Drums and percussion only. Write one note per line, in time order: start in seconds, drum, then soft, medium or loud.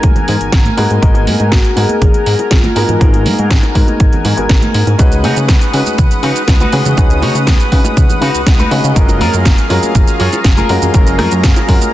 0.03 kick loud
0.03 closed hi-hat medium
0.16 closed hi-hat soft
0.16 high bongo medium
0.16 low conga medium
0.28 open hi-hat loud
0.28 low conga medium
0.41 closed hi-hat soft
0.52 kick loud
0.52 snare loud
0.52 closed hi-hat medium
0.52 high bongo medium
0.65 closed hi-hat soft
0.65 high conga medium
0.77 open hi-hat loud
0.77 high bongo soft
0.90 closed hi-hat soft
1.03 kick loud
1.03 closed hi-hat medium
1.14 closed hi-hat soft
1.14 high bongo medium
1.27 open hi-hat loud
1.27 high conga loud
1.40 closed hi-hat soft
1.40 high bongo soft
1.52 kick loud
1.52 snare loud
1.52 closed hi-hat medium
1.65 closed hi-hat soft
1.76 open hi-hat loud
1.76 high bongo medium
1.89 closed hi-hat soft
1.89 high conga medium
2.01 kick loud
2.01 closed hi-hat medium
2.01 high bongo soft
2.01 low conga medium
2.14 closed hi-hat soft
2.26 open hi-hat loud
2.39 closed hi-hat soft
2.39 high bongo medium
2.51 kick loud
2.51 snare loud
2.51 closed hi-hat medium
2.63 closed hi-hat soft
2.63 high bongo soft
2.63 high conga loud
2.76 open hi-hat loud
2.88 closed hi-hat soft
2.88 low conga medium
3.01 kick loud
3.01 closed hi-hat medium
3.01 high bongo medium
3.14 closed hi-hat soft
3.25 open hi-hat loud
3.25 high bongo soft
3.25 high conga medium
3.39 closed hi-hat soft
3.51 kick loud
3.51 snare loud
3.51 closed hi-hat medium
3.63 closed hi-hat soft
3.63 high bongo medium
3.75 kick medium
3.75 open hi-hat loud
3.87 closed hi-hat soft
3.87 high bongo soft
3.87 high conga medium
4.00 kick loud
4.00 closed hi-hat medium
4.13 closed hi-hat soft
4.13 low conga medium
4.25 open hi-hat loud
4.25 high bongo medium
4.25 low conga medium
4.38 closed hi-hat soft
4.49 kick loud
4.49 snare loud
4.49 closed hi-hat medium
4.49 high bongo soft
4.62 closed hi-hat soft
4.62 high conga medium
4.74 open hi-hat loud
4.87 closed hi-hat soft
4.87 high bongo medium
4.99 kick loud
4.99 closed hi-hat medium
4.99 high bongo soft
4.99 shaker medium
5.12 closed hi-hat soft
5.12 shaker soft
5.24 open hi-hat loud
5.24 high conga medium
5.37 closed hi-hat soft
5.37 high bongo medium
5.37 shaker medium
5.49 kick loud
5.49 snare loud
5.49 closed hi-hat medium
5.49 shaker medium
5.61 closed hi-hat soft
5.61 high bongo soft
5.61 shaker soft
5.73 open hi-hat loud
5.86 closed hi-hat soft
5.86 high conga medium
5.86 shaker medium
5.98 kick loud
5.98 closed hi-hat medium
5.98 high bongo medium
5.98 low conga medium
5.98 shaker medium
6.11 closed hi-hat soft
6.11 shaker soft
6.23 open hi-hat loud
6.23 high bongo soft
6.36 closed hi-hat soft
6.36 shaker medium
6.48 kick loud
6.48 snare loud
6.48 closed hi-hat medium
6.48 shaker medium
6.60 closed hi-hat soft
6.60 high bongo medium
6.60 high conga loud
6.60 shaker soft
6.72 open hi-hat loud
6.85 closed hi-hat soft
6.85 high bongo medium
6.85 low conga medium
6.85 shaker medium
6.97 kick loud
6.97 closed hi-hat medium
6.97 shaker medium
7.10 closed hi-hat soft
7.10 shaker soft
7.22 open hi-hat loud
7.22 high bongo medium
7.22 high conga medium
7.35 closed hi-hat soft
7.35 shaker medium
7.47 kick loud
7.47 snare loud
7.47 closed hi-hat medium
7.47 high bongo soft
7.47 shaker medium
7.60 closed hi-hat soft
7.60 shaker soft
7.72 kick medium
7.72 open hi-hat loud
7.84 closed hi-hat soft
7.84 high bongo medium
7.84 high conga medium
7.84 shaker medium
7.97 kick loud
7.97 closed hi-hat medium
7.97 shaker medium
8.09 closed hi-hat soft
8.09 high bongo soft
8.09 low conga medium
8.09 shaker soft
8.21 open hi-hat loud
8.21 low conga medium
8.34 closed hi-hat soft
8.34 shaker medium
8.47 kick loud
8.47 snare loud
8.47 closed hi-hat medium
8.47 high bongo medium
8.47 shaker medium
8.59 closed hi-hat soft
8.59 high conga medium
8.59 shaker soft
8.71 open hi-hat loud
8.71 high bongo soft
8.84 closed hi-hat soft
8.84 shaker medium
8.96 kick loud
8.96 closed hi-hat medium
8.96 shaker medium
9.09 closed hi-hat soft
9.09 high bongo medium
9.09 shaker soft
9.20 open hi-hat loud
9.20 high conga medium
9.33 closed hi-hat soft
9.33 high bongo medium
9.33 shaker medium
9.45 kick loud
9.45 snare loud
9.45 closed hi-hat medium
9.45 shaker medium
9.58 closed hi-hat soft
9.58 shaker soft
9.70 open hi-hat loud
9.70 high bongo medium
9.83 closed hi-hat soft
9.83 high conga medium
9.83 shaker medium
9.95 kick loud
9.95 closed hi-hat medium
9.95 high bongo soft
9.95 low conga medium
9.95 shaker medium
10.08 closed hi-hat soft
10.08 shaker soft
10.20 open hi-hat loud
10.32 closed hi-hat soft
10.32 high bongo medium
10.32 shaker medium
10.44 kick loud
10.44 snare loud
10.44 closed hi-hat medium
10.44 shaker medium
10.57 closed hi-hat soft
10.57 high bongo medium
10.57 high conga medium
10.57 shaker soft
10.69 open hi-hat loud
10.82 closed hi-hat soft
10.82 low conga medium
10.82 shaker medium
10.94 kick loud
10.94 closed hi-hat medium
10.94 high bongo medium
10.94 shaker medium
11.07 closed hi-hat soft
11.07 shaker soft
11.19 cross-stick medium
11.19 open hi-hat loud
11.19 high bongo medium
11.19 high conga medium
11.31 closed hi-hat soft
11.31 shaker medium
11.44 kick loud
11.44 snare loud
11.44 closed hi-hat medium
11.44 shaker medium
11.56 closed hi-hat soft
11.56 high bongo medium
11.56 shaker soft
11.69 kick medium
11.69 open hi-hat loud
11.81 closed hi-hat soft
11.81 high bongo medium
11.81 high conga medium
11.81 shaker medium